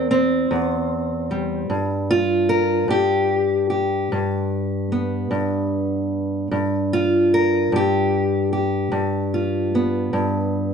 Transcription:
Already playing: E2 A#4
0.11 C4
0.51 E2
1.31 G3
1.70 G2
2.11 F4
2.49 A#4
2.88 G2 G4
3.70 G4
4.12 G2
4.92 B3
5.31 G2
6.51 G2
6.93 F4
7.34 A#4
7.72 G2 G4
8.53 G4
8.92 G2
9.34 F4
9.75 B3
10.13 G2

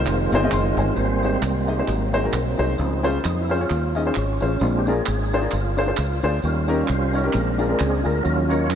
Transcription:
Already playing: D#3 G#3 C4 F4
0.06 F1, clap, tambourine
0.31 G1 C4 D#4 F4 G#4 C5, tambourine
0.43 C4 D#4 F4 G#4 D#5
0.51 F#1 D#5 C6, clap, tambourine
0.77 G1 C5 G#5, tambourine
0.95 G#1 G#2 G3 A#3 C4 C5, tambourine
1.23 D#4 G4 G#4 C5, tambourine
1.41 C2 C4, clap, tambourine
1.67 D#4 G4 G#4 D#5, tambourine
1.78 D#4 G4 G#4 C5
1.87 G#1 G#2 F#3 A#3 C4, clap, tambourine
2.13 D#4 F#4 G#4 C5, tambourine
2.24 D#4 F#4 G#4 A#4
2.33 B1, clap, tambourine
2.58 C2 D#4 F#4 G#4 C5, tambourine
2.77 C#2 C#3 F3 C4 D#4, tambourine
3.03 C#4 F4 G#4 C5, tambourine
3.25 F2 D#4, clap, tambourine
3.41 E4
3.49 C#4 F4 G#4 C5, tambourine
3.59 C#4 F4 G#4 C#5
3.70 D#2, clap, tambourine
3.95 C#4 D#4 F4 G#4 D#5, tambourine
4.06 C#4 F4 G#4 C5
4.15 G#1 C#4, clap, tambourine
4.40 A1 C#4 F4 G#4 C5, tambourine
4.60 A#1 A#2 G#3 C4 D4 F4, tambourine
4.79 G4
4.86 D4 F4 G#4 A#4, tambourine
5.06 G#1, clap, tambourine
5.32 D4 F4 G#4 C5, tambourine
5.41 D4 F4 G#4 A#4
5.51 G1 F4, clap, tambourine
5.77 D4 F4 G#4 C5, tambourine
5.86 D4 F4 G#4 C5
5.97 C#2, clap, tambourine
6.22 D2 D4 F4 G#4 C5, tambourine
6.42 D#2 D#3 G3 C#4 F4, tambourine
6.68 C#4 D#4 G4 A#4, tambourine
6.88 C2 C5, clap, tambourine
7.13 C#4 D#4 G4 A#4 C#5, tambourine
7.24 C#4 D#4 G4 A#4
7.33 A#1 A#2 G#3 C4 D4, clap, tambourine
7.58 D4 F4 G#4 A#4, tambourine
7.68 D4 F4 G#4 A#4
7.79 C#2 G#4, clap, tambourine
8.03 D2 D4 F4 G#4 A#4, tambourine
8.23 D#2 D#3 F#3 C#4 F4 A#4, tambourine
8.49 C#4 D#4 F#4 A#4 C#5, tambourine
8.70 F#2 A#4, clap, tambourine

